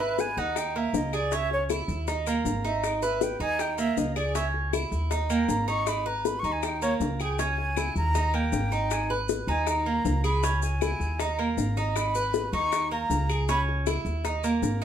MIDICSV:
0, 0, Header, 1, 5, 480
1, 0, Start_track
1, 0, Tempo, 379987
1, 1667, Time_signature, 4, 2, 24, 8
1, 18751, End_track
2, 0, Start_track
2, 0, Title_t, "Flute"
2, 0, Program_c, 0, 73
2, 0, Note_on_c, 0, 76, 92
2, 255, Note_on_c, 0, 80, 97
2, 274, Note_off_c, 0, 76, 0
2, 485, Note_on_c, 0, 78, 100
2, 504, Note_off_c, 0, 80, 0
2, 731, Note_on_c, 0, 79, 93
2, 750, Note_off_c, 0, 78, 0
2, 976, Note_on_c, 0, 76, 88
2, 995, Note_off_c, 0, 79, 0
2, 1222, Note_on_c, 0, 75, 74
2, 1241, Note_off_c, 0, 76, 0
2, 1453, Note_on_c, 0, 74, 93
2, 1472, Note_off_c, 0, 75, 0
2, 1697, Note_on_c, 0, 76, 109
2, 1716, Note_off_c, 0, 74, 0
2, 1922, Note_off_c, 0, 76, 0
2, 1934, Note_on_c, 0, 73, 83
2, 2069, Note_off_c, 0, 73, 0
2, 3352, Note_on_c, 0, 76, 80
2, 3603, Note_on_c, 0, 75, 82
2, 3622, Note_off_c, 0, 76, 0
2, 3835, Note_on_c, 0, 76, 85
2, 3854, Note_off_c, 0, 75, 0
2, 4080, Note_on_c, 0, 79, 84
2, 4099, Note_off_c, 0, 76, 0
2, 4303, Note_off_c, 0, 79, 0
2, 4311, Note_on_c, 0, 80, 116
2, 4557, Note_on_c, 0, 79, 91
2, 4576, Note_off_c, 0, 80, 0
2, 4768, Note_off_c, 0, 79, 0
2, 4776, Note_on_c, 0, 76, 102
2, 5029, Note_on_c, 0, 75, 84
2, 5048, Note_off_c, 0, 76, 0
2, 5242, Note_off_c, 0, 75, 0
2, 5249, Note_on_c, 0, 74, 81
2, 5476, Note_off_c, 0, 74, 0
2, 5502, Note_on_c, 0, 76, 89
2, 5644, Note_off_c, 0, 76, 0
2, 6464, Note_on_c, 0, 75, 80
2, 6697, Note_on_c, 0, 79, 89
2, 6716, Note_off_c, 0, 75, 0
2, 6956, Note_on_c, 0, 82, 72
2, 6975, Note_off_c, 0, 79, 0
2, 7174, Note_off_c, 0, 82, 0
2, 7182, Note_on_c, 0, 85, 95
2, 7431, Note_on_c, 0, 83, 85
2, 7450, Note_off_c, 0, 85, 0
2, 7667, Note_on_c, 0, 82, 85
2, 7686, Note_off_c, 0, 83, 0
2, 7913, Note_on_c, 0, 83, 84
2, 7932, Note_off_c, 0, 82, 0
2, 8077, Note_on_c, 0, 85, 103
2, 8096, Note_off_c, 0, 83, 0
2, 8240, Note_on_c, 0, 80, 74
2, 8259, Note_off_c, 0, 85, 0
2, 8391, Note_on_c, 0, 79, 83
2, 8410, Note_off_c, 0, 80, 0
2, 8617, Note_off_c, 0, 79, 0
2, 8625, Note_on_c, 0, 73, 98
2, 8765, Note_off_c, 0, 73, 0
2, 9105, Note_on_c, 0, 79, 78
2, 9359, Note_on_c, 0, 80, 98
2, 9377, Note_off_c, 0, 79, 0
2, 10061, Note_off_c, 0, 80, 0
2, 10069, Note_on_c, 0, 82, 111
2, 10547, Note_on_c, 0, 79, 99
2, 10566, Note_off_c, 0, 82, 0
2, 11281, Note_on_c, 0, 80, 88
2, 11300, Note_off_c, 0, 79, 0
2, 11510, Note_off_c, 0, 80, 0
2, 11982, Note_on_c, 0, 80, 96
2, 12225, Note_on_c, 0, 82, 82
2, 12244, Note_off_c, 0, 80, 0
2, 12935, Note_off_c, 0, 82, 0
2, 12943, Note_on_c, 0, 83, 91
2, 13390, Note_off_c, 0, 83, 0
2, 13428, Note_on_c, 0, 80, 92
2, 14154, Note_on_c, 0, 82, 76
2, 14173, Note_off_c, 0, 80, 0
2, 14390, Note_off_c, 0, 82, 0
2, 14866, Note_on_c, 0, 82, 83
2, 15114, Note_on_c, 0, 83, 95
2, 15133, Note_off_c, 0, 82, 0
2, 15822, Note_off_c, 0, 83, 0
2, 15830, Note_on_c, 0, 85, 96
2, 16277, Note_off_c, 0, 85, 0
2, 16317, Note_on_c, 0, 82, 102
2, 16985, Note_off_c, 0, 82, 0
2, 17055, Note_on_c, 0, 83, 97
2, 17193, Note_off_c, 0, 83, 0
2, 18751, End_track
3, 0, Start_track
3, 0, Title_t, "Cuban tres"
3, 0, Program_c, 1, 25
3, 0, Note_on_c, 1, 71, 75
3, 460, Note_off_c, 1, 71, 0
3, 474, Note_on_c, 1, 63, 78
3, 937, Note_off_c, 1, 63, 0
3, 956, Note_on_c, 1, 58, 66
3, 1417, Note_off_c, 1, 58, 0
3, 1433, Note_on_c, 1, 68, 77
3, 1663, Note_off_c, 1, 68, 0
3, 1675, Note_on_c, 1, 61, 78
3, 2136, Note_off_c, 1, 61, 0
3, 2149, Note_on_c, 1, 64, 61
3, 2612, Note_off_c, 1, 64, 0
3, 2623, Note_on_c, 1, 63, 75
3, 2856, Note_off_c, 1, 63, 0
3, 2867, Note_on_c, 1, 58, 76
3, 3330, Note_off_c, 1, 58, 0
3, 3341, Note_on_c, 1, 63, 80
3, 3806, Note_off_c, 1, 63, 0
3, 3820, Note_on_c, 1, 71, 75
3, 4285, Note_off_c, 1, 71, 0
3, 4297, Note_on_c, 1, 63, 79
3, 4763, Note_off_c, 1, 63, 0
3, 4777, Note_on_c, 1, 58, 75
3, 5242, Note_off_c, 1, 58, 0
3, 5257, Note_on_c, 1, 68, 72
3, 5490, Note_off_c, 1, 68, 0
3, 5497, Note_on_c, 1, 61, 81
3, 5962, Note_off_c, 1, 61, 0
3, 5976, Note_on_c, 1, 64, 57
3, 6441, Note_off_c, 1, 64, 0
3, 6457, Note_on_c, 1, 63, 77
3, 6689, Note_off_c, 1, 63, 0
3, 6695, Note_on_c, 1, 58, 81
3, 7160, Note_off_c, 1, 58, 0
3, 7172, Note_on_c, 1, 63, 82
3, 7639, Note_off_c, 1, 63, 0
3, 7652, Note_on_c, 1, 71, 74
3, 8118, Note_off_c, 1, 71, 0
3, 8136, Note_on_c, 1, 63, 69
3, 8601, Note_off_c, 1, 63, 0
3, 8616, Note_on_c, 1, 58, 75
3, 9081, Note_off_c, 1, 58, 0
3, 9101, Note_on_c, 1, 68, 72
3, 9331, Note_off_c, 1, 68, 0
3, 9338, Note_on_c, 1, 61, 75
3, 9802, Note_off_c, 1, 61, 0
3, 9813, Note_on_c, 1, 64, 63
3, 10280, Note_off_c, 1, 64, 0
3, 10295, Note_on_c, 1, 63, 75
3, 10528, Note_off_c, 1, 63, 0
3, 10533, Note_on_c, 1, 58, 75
3, 11001, Note_off_c, 1, 58, 0
3, 11013, Note_on_c, 1, 63, 82
3, 11481, Note_off_c, 1, 63, 0
3, 11496, Note_on_c, 1, 71, 75
3, 11963, Note_off_c, 1, 71, 0
3, 11978, Note_on_c, 1, 63, 82
3, 12445, Note_off_c, 1, 63, 0
3, 12457, Note_on_c, 1, 58, 71
3, 12925, Note_off_c, 1, 58, 0
3, 12937, Note_on_c, 1, 68, 75
3, 13173, Note_off_c, 1, 68, 0
3, 13180, Note_on_c, 1, 61, 75
3, 13648, Note_off_c, 1, 61, 0
3, 13665, Note_on_c, 1, 64, 62
3, 14131, Note_off_c, 1, 64, 0
3, 14150, Note_on_c, 1, 63, 78
3, 14381, Note_off_c, 1, 63, 0
3, 14387, Note_on_c, 1, 58, 67
3, 14853, Note_off_c, 1, 58, 0
3, 14869, Note_on_c, 1, 63, 78
3, 15335, Note_off_c, 1, 63, 0
3, 15352, Note_on_c, 1, 71, 70
3, 15817, Note_off_c, 1, 71, 0
3, 15831, Note_on_c, 1, 63, 78
3, 16297, Note_off_c, 1, 63, 0
3, 16314, Note_on_c, 1, 58, 75
3, 16779, Note_off_c, 1, 58, 0
3, 16792, Note_on_c, 1, 68, 69
3, 17025, Note_off_c, 1, 68, 0
3, 17037, Note_on_c, 1, 61, 80
3, 17502, Note_off_c, 1, 61, 0
3, 17516, Note_on_c, 1, 64, 64
3, 17982, Note_off_c, 1, 64, 0
3, 17996, Note_on_c, 1, 63, 72
3, 18229, Note_off_c, 1, 63, 0
3, 18238, Note_on_c, 1, 58, 72
3, 18704, Note_off_c, 1, 58, 0
3, 18751, End_track
4, 0, Start_track
4, 0, Title_t, "Upright bass"
4, 0, Program_c, 2, 32
4, 0, Note_on_c, 2, 32, 74
4, 395, Note_off_c, 2, 32, 0
4, 467, Note_on_c, 2, 39, 82
4, 1137, Note_off_c, 2, 39, 0
4, 1179, Note_on_c, 2, 37, 77
4, 2306, Note_off_c, 2, 37, 0
4, 2377, Note_on_c, 2, 39, 90
4, 3048, Note_off_c, 2, 39, 0
4, 3092, Note_on_c, 2, 32, 79
4, 4220, Note_off_c, 2, 32, 0
4, 4292, Note_on_c, 2, 39, 79
4, 4963, Note_off_c, 2, 39, 0
4, 5014, Note_on_c, 2, 37, 85
4, 6139, Note_off_c, 2, 37, 0
4, 6209, Note_on_c, 2, 39, 81
4, 6881, Note_off_c, 2, 39, 0
4, 6927, Note_on_c, 2, 32, 78
4, 8056, Note_off_c, 2, 32, 0
4, 8123, Note_on_c, 2, 39, 76
4, 8798, Note_off_c, 2, 39, 0
4, 8844, Note_on_c, 2, 37, 81
4, 9975, Note_off_c, 2, 37, 0
4, 10050, Note_on_c, 2, 39, 84
4, 10723, Note_off_c, 2, 39, 0
4, 10764, Note_on_c, 2, 32, 86
4, 11898, Note_off_c, 2, 32, 0
4, 11967, Note_on_c, 2, 39, 89
4, 12644, Note_off_c, 2, 39, 0
4, 12692, Note_on_c, 2, 37, 93
4, 13825, Note_off_c, 2, 37, 0
4, 13894, Note_on_c, 2, 39, 86
4, 14570, Note_off_c, 2, 39, 0
4, 14617, Note_on_c, 2, 32, 84
4, 15750, Note_off_c, 2, 32, 0
4, 15823, Note_on_c, 2, 39, 92
4, 16498, Note_off_c, 2, 39, 0
4, 16544, Note_on_c, 2, 37, 86
4, 17676, Note_off_c, 2, 37, 0
4, 17746, Note_on_c, 2, 39, 81
4, 18422, Note_off_c, 2, 39, 0
4, 18469, Note_on_c, 2, 32, 79
4, 18751, Note_off_c, 2, 32, 0
4, 18751, End_track
5, 0, Start_track
5, 0, Title_t, "Drums"
5, 234, Note_on_c, 9, 60, 62
5, 236, Note_on_c, 9, 70, 64
5, 360, Note_off_c, 9, 60, 0
5, 363, Note_off_c, 9, 70, 0
5, 471, Note_on_c, 9, 70, 22
5, 474, Note_on_c, 9, 60, 30
5, 598, Note_off_c, 9, 70, 0
5, 600, Note_off_c, 9, 60, 0
5, 708, Note_on_c, 9, 60, 61
5, 713, Note_on_c, 9, 75, 64
5, 714, Note_on_c, 9, 70, 68
5, 834, Note_off_c, 9, 60, 0
5, 840, Note_off_c, 9, 75, 0
5, 841, Note_off_c, 9, 70, 0
5, 1190, Note_on_c, 9, 60, 34
5, 1190, Note_on_c, 9, 61, 96
5, 1191, Note_on_c, 9, 70, 67
5, 1316, Note_off_c, 9, 60, 0
5, 1316, Note_off_c, 9, 61, 0
5, 1317, Note_off_c, 9, 70, 0
5, 1425, Note_on_c, 9, 60, 33
5, 1429, Note_on_c, 9, 75, 73
5, 1430, Note_on_c, 9, 70, 30
5, 1551, Note_off_c, 9, 60, 0
5, 1555, Note_off_c, 9, 75, 0
5, 1556, Note_off_c, 9, 70, 0
5, 1663, Note_on_c, 9, 70, 68
5, 1666, Note_on_c, 9, 60, 62
5, 1789, Note_off_c, 9, 70, 0
5, 1793, Note_off_c, 9, 60, 0
5, 1909, Note_on_c, 9, 60, 39
5, 2036, Note_off_c, 9, 60, 0
5, 2143, Note_on_c, 9, 70, 67
5, 2143, Note_on_c, 9, 75, 67
5, 2149, Note_on_c, 9, 60, 62
5, 2269, Note_off_c, 9, 70, 0
5, 2269, Note_off_c, 9, 75, 0
5, 2275, Note_off_c, 9, 60, 0
5, 2383, Note_on_c, 9, 70, 28
5, 2389, Note_on_c, 9, 60, 33
5, 2510, Note_off_c, 9, 70, 0
5, 2516, Note_off_c, 9, 60, 0
5, 2622, Note_on_c, 9, 70, 67
5, 2628, Note_on_c, 9, 60, 55
5, 2748, Note_off_c, 9, 70, 0
5, 2754, Note_off_c, 9, 60, 0
5, 2862, Note_on_c, 9, 75, 64
5, 2863, Note_on_c, 9, 70, 62
5, 2988, Note_off_c, 9, 75, 0
5, 2990, Note_off_c, 9, 70, 0
5, 3104, Note_on_c, 9, 60, 39
5, 3104, Note_on_c, 9, 61, 90
5, 3104, Note_on_c, 9, 70, 69
5, 3230, Note_off_c, 9, 70, 0
5, 3231, Note_off_c, 9, 60, 0
5, 3231, Note_off_c, 9, 61, 0
5, 3346, Note_on_c, 9, 60, 32
5, 3347, Note_on_c, 9, 70, 29
5, 3472, Note_off_c, 9, 60, 0
5, 3473, Note_off_c, 9, 70, 0
5, 3582, Note_on_c, 9, 60, 57
5, 3583, Note_on_c, 9, 75, 72
5, 3584, Note_on_c, 9, 70, 64
5, 3708, Note_off_c, 9, 60, 0
5, 3709, Note_off_c, 9, 75, 0
5, 3710, Note_off_c, 9, 70, 0
5, 3819, Note_on_c, 9, 70, 62
5, 3822, Note_on_c, 9, 60, 36
5, 3946, Note_off_c, 9, 70, 0
5, 3948, Note_off_c, 9, 60, 0
5, 4058, Note_on_c, 9, 60, 63
5, 4061, Note_on_c, 9, 70, 68
5, 4184, Note_off_c, 9, 60, 0
5, 4187, Note_off_c, 9, 70, 0
5, 4299, Note_on_c, 9, 60, 34
5, 4304, Note_on_c, 9, 70, 23
5, 4426, Note_off_c, 9, 60, 0
5, 4430, Note_off_c, 9, 70, 0
5, 4536, Note_on_c, 9, 75, 67
5, 4538, Note_on_c, 9, 60, 61
5, 4540, Note_on_c, 9, 70, 64
5, 4662, Note_off_c, 9, 75, 0
5, 4664, Note_off_c, 9, 60, 0
5, 4667, Note_off_c, 9, 70, 0
5, 4776, Note_on_c, 9, 70, 59
5, 4902, Note_off_c, 9, 70, 0
5, 5020, Note_on_c, 9, 70, 69
5, 5021, Note_on_c, 9, 60, 34
5, 5021, Note_on_c, 9, 61, 86
5, 5146, Note_off_c, 9, 70, 0
5, 5147, Note_off_c, 9, 60, 0
5, 5147, Note_off_c, 9, 61, 0
5, 5256, Note_on_c, 9, 75, 75
5, 5258, Note_on_c, 9, 70, 29
5, 5260, Note_on_c, 9, 60, 34
5, 5382, Note_off_c, 9, 75, 0
5, 5385, Note_off_c, 9, 70, 0
5, 5386, Note_off_c, 9, 60, 0
5, 5497, Note_on_c, 9, 60, 59
5, 5497, Note_on_c, 9, 70, 71
5, 5623, Note_off_c, 9, 60, 0
5, 5624, Note_off_c, 9, 70, 0
5, 5736, Note_on_c, 9, 60, 35
5, 5863, Note_off_c, 9, 60, 0
5, 5978, Note_on_c, 9, 60, 61
5, 5980, Note_on_c, 9, 75, 71
5, 5981, Note_on_c, 9, 70, 68
5, 6105, Note_off_c, 9, 60, 0
5, 6106, Note_off_c, 9, 75, 0
5, 6107, Note_off_c, 9, 70, 0
5, 6213, Note_on_c, 9, 60, 36
5, 6217, Note_on_c, 9, 70, 26
5, 6340, Note_off_c, 9, 60, 0
5, 6343, Note_off_c, 9, 70, 0
5, 6453, Note_on_c, 9, 60, 58
5, 6456, Note_on_c, 9, 70, 68
5, 6580, Note_off_c, 9, 60, 0
5, 6582, Note_off_c, 9, 70, 0
5, 6693, Note_on_c, 9, 75, 64
5, 6694, Note_on_c, 9, 70, 62
5, 6819, Note_off_c, 9, 75, 0
5, 6820, Note_off_c, 9, 70, 0
5, 6930, Note_on_c, 9, 60, 37
5, 6930, Note_on_c, 9, 61, 96
5, 6936, Note_on_c, 9, 70, 73
5, 7056, Note_off_c, 9, 60, 0
5, 7056, Note_off_c, 9, 61, 0
5, 7063, Note_off_c, 9, 70, 0
5, 7175, Note_on_c, 9, 60, 33
5, 7177, Note_on_c, 9, 70, 28
5, 7302, Note_off_c, 9, 60, 0
5, 7304, Note_off_c, 9, 70, 0
5, 7411, Note_on_c, 9, 70, 68
5, 7413, Note_on_c, 9, 60, 62
5, 7415, Note_on_c, 9, 75, 71
5, 7538, Note_off_c, 9, 70, 0
5, 7540, Note_off_c, 9, 60, 0
5, 7542, Note_off_c, 9, 75, 0
5, 7660, Note_on_c, 9, 60, 39
5, 7786, Note_off_c, 9, 60, 0
5, 7896, Note_on_c, 9, 60, 62
5, 7898, Note_on_c, 9, 70, 64
5, 8023, Note_off_c, 9, 60, 0
5, 8024, Note_off_c, 9, 70, 0
5, 8136, Note_on_c, 9, 70, 27
5, 8139, Note_on_c, 9, 60, 32
5, 8262, Note_off_c, 9, 70, 0
5, 8266, Note_off_c, 9, 60, 0
5, 8371, Note_on_c, 9, 70, 63
5, 8373, Note_on_c, 9, 75, 72
5, 8378, Note_on_c, 9, 60, 58
5, 8498, Note_off_c, 9, 70, 0
5, 8499, Note_off_c, 9, 75, 0
5, 8504, Note_off_c, 9, 60, 0
5, 8614, Note_on_c, 9, 70, 63
5, 8740, Note_off_c, 9, 70, 0
5, 8851, Note_on_c, 9, 70, 65
5, 8859, Note_on_c, 9, 60, 39
5, 8859, Note_on_c, 9, 61, 87
5, 8977, Note_off_c, 9, 70, 0
5, 8985, Note_off_c, 9, 60, 0
5, 8985, Note_off_c, 9, 61, 0
5, 9091, Note_on_c, 9, 75, 70
5, 9093, Note_on_c, 9, 70, 28
5, 9099, Note_on_c, 9, 60, 32
5, 9217, Note_off_c, 9, 75, 0
5, 9220, Note_off_c, 9, 70, 0
5, 9225, Note_off_c, 9, 60, 0
5, 9334, Note_on_c, 9, 70, 66
5, 9337, Note_on_c, 9, 60, 59
5, 9460, Note_off_c, 9, 70, 0
5, 9463, Note_off_c, 9, 60, 0
5, 9576, Note_on_c, 9, 60, 37
5, 9703, Note_off_c, 9, 60, 0
5, 9810, Note_on_c, 9, 75, 75
5, 9815, Note_on_c, 9, 70, 62
5, 9818, Note_on_c, 9, 60, 65
5, 9936, Note_off_c, 9, 75, 0
5, 9942, Note_off_c, 9, 70, 0
5, 9944, Note_off_c, 9, 60, 0
5, 10054, Note_on_c, 9, 70, 27
5, 10056, Note_on_c, 9, 60, 33
5, 10180, Note_off_c, 9, 70, 0
5, 10182, Note_off_c, 9, 60, 0
5, 10292, Note_on_c, 9, 70, 66
5, 10296, Note_on_c, 9, 60, 56
5, 10418, Note_off_c, 9, 70, 0
5, 10422, Note_off_c, 9, 60, 0
5, 10531, Note_on_c, 9, 75, 58
5, 10658, Note_off_c, 9, 75, 0
5, 10770, Note_on_c, 9, 70, 74
5, 10775, Note_on_c, 9, 60, 36
5, 10775, Note_on_c, 9, 61, 86
5, 10896, Note_off_c, 9, 70, 0
5, 10901, Note_off_c, 9, 60, 0
5, 10901, Note_off_c, 9, 61, 0
5, 11014, Note_on_c, 9, 70, 29
5, 11015, Note_on_c, 9, 60, 34
5, 11140, Note_off_c, 9, 70, 0
5, 11141, Note_off_c, 9, 60, 0
5, 11250, Note_on_c, 9, 70, 78
5, 11253, Note_on_c, 9, 75, 65
5, 11259, Note_on_c, 9, 60, 60
5, 11376, Note_off_c, 9, 70, 0
5, 11379, Note_off_c, 9, 75, 0
5, 11386, Note_off_c, 9, 60, 0
5, 11501, Note_on_c, 9, 60, 37
5, 11627, Note_off_c, 9, 60, 0
5, 11730, Note_on_c, 9, 70, 68
5, 11738, Note_on_c, 9, 60, 61
5, 11857, Note_off_c, 9, 70, 0
5, 11864, Note_off_c, 9, 60, 0
5, 11974, Note_on_c, 9, 70, 29
5, 11982, Note_on_c, 9, 60, 36
5, 12100, Note_off_c, 9, 70, 0
5, 12108, Note_off_c, 9, 60, 0
5, 12210, Note_on_c, 9, 75, 66
5, 12214, Note_on_c, 9, 70, 71
5, 12215, Note_on_c, 9, 60, 61
5, 12336, Note_off_c, 9, 75, 0
5, 12341, Note_off_c, 9, 60, 0
5, 12341, Note_off_c, 9, 70, 0
5, 12698, Note_on_c, 9, 70, 61
5, 12702, Note_on_c, 9, 60, 35
5, 12702, Note_on_c, 9, 61, 89
5, 12824, Note_off_c, 9, 70, 0
5, 12829, Note_off_c, 9, 60, 0
5, 12829, Note_off_c, 9, 61, 0
5, 12935, Note_on_c, 9, 75, 71
5, 12940, Note_on_c, 9, 70, 29
5, 12945, Note_on_c, 9, 60, 34
5, 13061, Note_off_c, 9, 75, 0
5, 13066, Note_off_c, 9, 70, 0
5, 13072, Note_off_c, 9, 60, 0
5, 13178, Note_on_c, 9, 70, 72
5, 13183, Note_on_c, 9, 60, 65
5, 13305, Note_off_c, 9, 70, 0
5, 13309, Note_off_c, 9, 60, 0
5, 13419, Note_on_c, 9, 70, 66
5, 13428, Note_on_c, 9, 60, 38
5, 13545, Note_off_c, 9, 70, 0
5, 13554, Note_off_c, 9, 60, 0
5, 13659, Note_on_c, 9, 75, 66
5, 13663, Note_on_c, 9, 70, 63
5, 13667, Note_on_c, 9, 60, 61
5, 13785, Note_off_c, 9, 75, 0
5, 13789, Note_off_c, 9, 70, 0
5, 13793, Note_off_c, 9, 60, 0
5, 13904, Note_on_c, 9, 60, 33
5, 13908, Note_on_c, 9, 70, 26
5, 14030, Note_off_c, 9, 60, 0
5, 14035, Note_off_c, 9, 70, 0
5, 14142, Note_on_c, 9, 60, 64
5, 14145, Note_on_c, 9, 70, 69
5, 14268, Note_off_c, 9, 60, 0
5, 14272, Note_off_c, 9, 70, 0
5, 14384, Note_on_c, 9, 75, 65
5, 14510, Note_off_c, 9, 75, 0
5, 14626, Note_on_c, 9, 60, 35
5, 14626, Note_on_c, 9, 61, 79
5, 14626, Note_on_c, 9, 70, 74
5, 14753, Note_off_c, 9, 60, 0
5, 14753, Note_off_c, 9, 61, 0
5, 14753, Note_off_c, 9, 70, 0
5, 14868, Note_on_c, 9, 60, 32
5, 14868, Note_on_c, 9, 70, 28
5, 14994, Note_off_c, 9, 60, 0
5, 14995, Note_off_c, 9, 70, 0
5, 15103, Note_on_c, 9, 75, 74
5, 15110, Note_on_c, 9, 70, 70
5, 15111, Note_on_c, 9, 60, 62
5, 15229, Note_off_c, 9, 75, 0
5, 15237, Note_off_c, 9, 70, 0
5, 15238, Note_off_c, 9, 60, 0
5, 15346, Note_on_c, 9, 70, 63
5, 15349, Note_on_c, 9, 60, 35
5, 15472, Note_off_c, 9, 70, 0
5, 15475, Note_off_c, 9, 60, 0
5, 15587, Note_on_c, 9, 60, 68
5, 15587, Note_on_c, 9, 70, 64
5, 15713, Note_off_c, 9, 70, 0
5, 15714, Note_off_c, 9, 60, 0
5, 15828, Note_on_c, 9, 70, 26
5, 15834, Note_on_c, 9, 60, 30
5, 15955, Note_off_c, 9, 70, 0
5, 15961, Note_off_c, 9, 60, 0
5, 16066, Note_on_c, 9, 75, 66
5, 16070, Note_on_c, 9, 70, 73
5, 16076, Note_on_c, 9, 60, 65
5, 16192, Note_off_c, 9, 75, 0
5, 16197, Note_off_c, 9, 70, 0
5, 16202, Note_off_c, 9, 60, 0
5, 16555, Note_on_c, 9, 70, 69
5, 16559, Note_on_c, 9, 60, 36
5, 16559, Note_on_c, 9, 61, 90
5, 16681, Note_off_c, 9, 70, 0
5, 16685, Note_off_c, 9, 60, 0
5, 16685, Note_off_c, 9, 61, 0
5, 16795, Note_on_c, 9, 75, 72
5, 16799, Note_on_c, 9, 60, 34
5, 16802, Note_on_c, 9, 70, 31
5, 16921, Note_off_c, 9, 75, 0
5, 16925, Note_off_c, 9, 60, 0
5, 16928, Note_off_c, 9, 70, 0
5, 17036, Note_on_c, 9, 70, 73
5, 17041, Note_on_c, 9, 60, 59
5, 17162, Note_off_c, 9, 70, 0
5, 17167, Note_off_c, 9, 60, 0
5, 17288, Note_on_c, 9, 60, 36
5, 17414, Note_off_c, 9, 60, 0
5, 17514, Note_on_c, 9, 70, 62
5, 17518, Note_on_c, 9, 75, 70
5, 17520, Note_on_c, 9, 60, 61
5, 17640, Note_off_c, 9, 70, 0
5, 17644, Note_off_c, 9, 75, 0
5, 17647, Note_off_c, 9, 60, 0
5, 17756, Note_on_c, 9, 70, 29
5, 17762, Note_on_c, 9, 60, 36
5, 17882, Note_off_c, 9, 70, 0
5, 17888, Note_off_c, 9, 60, 0
5, 17996, Note_on_c, 9, 60, 59
5, 17997, Note_on_c, 9, 70, 69
5, 18122, Note_off_c, 9, 60, 0
5, 18123, Note_off_c, 9, 70, 0
5, 18237, Note_on_c, 9, 70, 60
5, 18238, Note_on_c, 9, 75, 61
5, 18363, Note_off_c, 9, 70, 0
5, 18365, Note_off_c, 9, 75, 0
5, 18478, Note_on_c, 9, 60, 36
5, 18478, Note_on_c, 9, 61, 93
5, 18479, Note_on_c, 9, 70, 67
5, 18604, Note_off_c, 9, 60, 0
5, 18604, Note_off_c, 9, 61, 0
5, 18606, Note_off_c, 9, 70, 0
5, 18712, Note_on_c, 9, 60, 31
5, 18751, Note_off_c, 9, 60, 0
5, 18751, End_track
0, 0, End_of_file